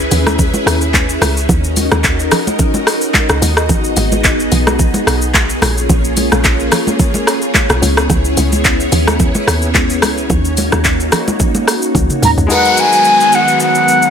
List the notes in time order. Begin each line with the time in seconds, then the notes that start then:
Already playing: C#4 E4 G#4 B4 E5
0.11 D#2, open hi-hat, low conga, shaker
0.27 cross-stick, high conga, shaker
0.39 kick, low conga, shaker
0.54 high conga, shaker
0.66 D#2, cross-stick, open hi-hat, shaker
0.81 shaker
0.94 kick, clap, high conga, shaker
1.09 shaker
1.22 C#2, cross-stick, open hi-hat, high conga, shaker
1.37 shaker
1.49 D#2 D#4 F#4 A#4 D#5, kick, low conga, shaker
1.64 shaker
1.76 open hi-hat, high conga, shaker
1.92 D#2, cross-stick, high conga, shaker
2.04 kick, clap, shaker
2.19 shaker
2.32 cross-stick, open hi-hat, low conga, shaker
2.47 high conga, shaker
2.59 kick, low conga, shaker
2.74 high conga, shaker
2.87 cross-stick, open hi-hat, shaker
3.01 shaker
3.14 kick, clap, high conga, shaker
3.29 C#2, cross-stick, shaker
3.42 D#2, open hi-hat, high conga, shaker
3.57 cross-stick, shaker
3.69 G#1 B3 G#4, kick, low conga, shaker
3.84 shaker
3.97 G#1, open hi-hat, high conga, shaker
4.12 high conga, shaker
4.24 kick, clap, shaker
4.40 shaker
4.52 B1, open hi-hat, low conga, shaker
4.67 cross-stick, high conga, shaker
4.79 kick, low conga, shaker
4.94 high conga, shaker
5.07 B1, cross-stick, open hi-hat, shaker
5.22 shaker
5.34 kick, clap, high conga, shaker
5.50 shaker
5.62 A#1 A#3 C#4 F4 C#5, cross-stick, open hi-hat, high conga, shaker
5.77 shaker
5.89 A#1, kick, low conga, shaker
6.04 shaker
6.17 open hi-hat, high conga, shaker
6.32 A#1, cross-stick, high conga, shaker
6.44 kick, clap, shaker
6.60 shaker
6.72 cross-stick, open hi-hat, low conga, shaker
6.87 high conga, shaker
6.99 kick, low conga, shaker
7.14 high conga, shaker
7.27 cross-stick, open hi-hat, shaker
7.42 shaker
7.54 kick, clap, high conga, shaker
7.70 B1, cross-stick, shaker
7.82 C#2 B3 C#4 E4, open hi-hat, high conga, shaker
7.97 cross-stick, shaker
8.10 C#2, kick, low conga, shaker
8.25 shaker
8.37 C#2, open hi-hat, high conga, shaker
8.52 high conga, shaker
8.64 kick, clap, shaker
8.80 shaker
8.92 D#2, open hi-hat, low conga, shaker
9.07 cross-stick, high conga, shaker
9.20 kick, low conga, shaker
9.35 high conga, shaker
9.47 D#2, cross-stick, open hi-hat, shaker
9.62 shaker
9.75 kick, clap, high conga, shaker
9.90 shaker
10.02 C#2, cross-stick, open hi-hat, high conga, shaker
10.18 shaker
10.30 D#2 A#3 D#4 F#4, kick, low conga, shaker
10.45 shaker
10.57 open hi-hat, high conga, shaker
10.72 D#2, cross-stick, high conga, shaker
10.84 kick, clap, shaker
11.00 shaker
11.12 cross-stick, open hi-hat, low conga, shaker
11.28 high conga, shaker
11.40 kick, low conga, shaker
11.55 high conga, shaker
11.68 cross-stick, open hi-hat, shaker
11.82 shaker
11.95 C#2, kick, high tom, high conga, shaker
12.10 mid tom, shaker
12.22 D#2 A#5, mid tom, open hi-hat, high conga, shaker
12.38 C#2, floor tom, shaker
12.47 D#3 F#3 G#3 B3 D#4 F#4, downlifter, shaker
12.51 A#4 B4 F#5
12.65 shaker
12.77 G#5, shaker
12.92 shaker
13.05 shaker
13.20 shaker
13.32 F#5, shaker
13.48 shaker
13.60 F#5, shaker
13.75 shaker
13.88 shaker
14.02 shaker